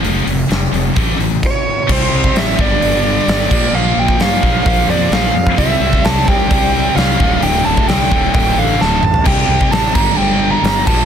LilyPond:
<<
  \new Staff \with { instrumentName = "Lead electric guitar" } { \time 4/4 \key c \mixolydian \tempo 4 = 130 r2. cis''4 | c''4 e''8 d''4. d''4 | f''8 g''8 f''4 f''8 d''8 f''4 | e''4 a''8 g''4. f''4 |
g''8 a''8 g''4 g''8 f''8 a''4 | g''4 a''8 bes''8 g''8. bes''8. a''8 | }
  \new Staff \with { instrumentName = "Analog synth pad" } { \time 4/4 \key c \mixolydian r1 | <c' g' d''>4. <g d' a'>2 <bes f' c''>8~ | <bes f' c''>1 | <c' g' d''>2.~ <c' g' d''>8 <d' a' e''>8~ |
<d' a' e''>1 | <c' g' d''>4. <g a d'>2 <bes f' c''>8 | }
  \new Staff \with { instrumentName = "Distorted electric guitar" } { \clef bass \time 4/4 \key c \mixolydian <f, c f>8 <f, c>8 <f, c>8 <f, c>8 <a, e a>8 <a, e>8 r4 | <c g c'>4. <g, d g>2 <bes, f bes>8~ | <bes, f bes>4. <bes, f bes>2 r8 | <c g c'>2 <c g c'>4. <d, a, d>8~ |
<d, a, d>4. <d, a, d>2 r8 | <c g c'>4. <g, d g>2 <bes, f bes>8 | }
  \new Staff \with { instrumentName = "Fingered electric bass" } { \clef bass \time 4/4 \key c \mixolydian f,,8 f,,8 f,,8 f,,8 a,,8 a,,8 r4 | c,8 c,8 a,,8 g,,8 g,,4 g,,8 bes,,8 | bes,,8 bes,,8 g,8 bes,,8 bes,,8 f,8 bes,,8 f,8 | c,8 c,8 c,8 c,8 c,4 c,8 d,,8 |
d,,8 d,,8 c,8 d,,8 d,,8 a,,8 d,,8 a,,8 | c,8 c,8 a,,8 g,,8 g,,4 g,,8 bes,,8 | }
  \new DrumStaff \with { instrumentName = "Drums" } \drummode { \time 4/4 hho8 hho8 <hho sn>8 hho8 <hho bd>8 hho8 <cymc bd>4 | <cymc bd>8. bd16 <hho sn>8 bd8 hho4 <hho sn>8 <cymc bd>8 | r8. bd16 <hho sn>8 bd8 <hho bd>4 <hho sn>8. bd16 | <hho bd>8. bd16 <hho sn>8 bd8 <hho bd>4 <hho sn>8 bd8 |
hho8. bd16 <hho sn>16 sn16 bd8 <hho bd>4 sn8 toml16 tomfh16 | <cymc bd>8. bd16 <hho sn>8 <cymc bd>8 r4 <hho sn>8 <cymc bd>8 | }
>>